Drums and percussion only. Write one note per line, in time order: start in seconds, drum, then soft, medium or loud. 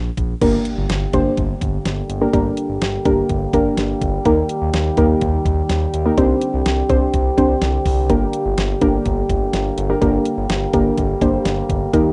0.17 kick medium
0.17 closed hi-hat medium
0.41 kick loud
0.41 closed hi-hat medium
0.41 crash loud
0.65 closed hi-hat medium
0.90 snare loud
0.90 closed hi-hat medium
1.13 kick loud
1.13 closed hi-hat medium
1.37 kick medium
1.37 closed hi-hat medium
1.61 kick loud
1.61 closed hi-hat medium
1.85 snare loud
1.85 closed hi-hat medium
2.10 closed hi-hat medium
2.33 kick loud
2.33 closed hi-hat medium
2.57 closed hi-hat medium
2.82 snare loud
2.82 closed hi-hat medium
3.05 kick loud
3.05 closed hi-hat medium
3.29 kick medium
3.29 closed hi-hat medium
3.53 kick loud
3.53 closed hi-hat medium
3.77 snare loud
3.77 closed hi-hat medium
4.01 kick loud
4.01 closed hi-hat medium
4.25 kick loud
4.25 closed hi-hat medium
4.49 closed hi-hat medium
4.74 snare loud
4.74 closed hi-hat medium
4.97 kick loud
4.97 closed hi-hat medium
5.21 kick medium
5.21 closed hi-hat medium
5.45 kick loud
5.45 closed hi-hat medium
5.69 snare loud
5.69 closed hi-hat medium
5.94 closed hi-hat medium
6.18 kick loud
6.18 closed hi-hat medium
6.41 closed hi-hat medium
6.66 snare loud
6.66 closed hi-hat medium
6.89 kick loud
6.89 closed hi-hat medium
7.14 kick medium
7.14 closed hi-hat medium
7.38 kick loud
7.38 closed hi-hat medium
7.62 snare loud
7.62 closed hi-hat medium
7.86 kick medium
7.86 open hi-hat medium
8.10 kick loud
8.10 closed hi-hat medium
8.33 closed hi-hat medium
8.58 snare loud
8.58 closed hi-hat medium
8.81 kick loud
8.81 closed hi-hat medium
9.06 kick medium
9.06 closed hi-hat medium
9.29 kick loud
9.29 closed hi-hat medium
9.53 snare loud
9.53 closed hi-hat medium
9.78 closed hi-hat medium
10.02 kick loud
10.02 closed hi-hat medium
10.25 closed hi-hat medium
10.50 snare loud
10.50 closed hi-hat medium
10.73 kick loud
10.73 closed hi-hat medium
10.98 kick medium
10.98 closed hi-hat medium
11.21 kick loud
11.21 closed hi-hat medium
11.45 snare loud
11.45 closed hi-hat medium
11.69 kick loud
11.69 closed hi-hat medium
11.94 kick loud
11.94 closed hi-hat medium